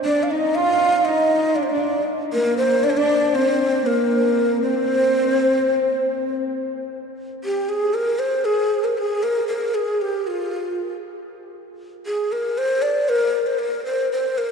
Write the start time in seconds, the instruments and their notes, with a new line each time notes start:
0.03 cello section D4, ney D5
0.23 ney F5
0.30 cello section D#4, ney D#5
0.55 cello section F4, ney F5
1.05 cello section D#4, ney D#5
1.56 cello section D4, ney D5
1.63 ney C5
1.70 cello section D4, ney D5
2.33 cello section A#3, ney A#4
2.58 ney C5
2.83 cello section D4, ney D5
2.90 ney C5
2.97 cello section D4, ney D5
3.34 cello section C4, ney C5
3.86 cello section A#3, ney A#4
4.62 cello section C4, ney C5
7.44 ney G4
7.69 ney G#4
7.94 ney A#4
8.19 ney C5
8.45 ney G#4
8.84 ney A#4
8.98 ney G#4
9.23 ney A#4
9.48 ney A#4
9.74 ney G#4
10.02 ney G4
10.27 ney F4
12.06 ney G#4
12.32 ney A#4
12.58 ney C5
12.82 ney D5
13.09 ney A#4
13.47 ney C5
13.59 ney A#4
13.85 ney C5
14.12 ney C5
14.38 ney A#4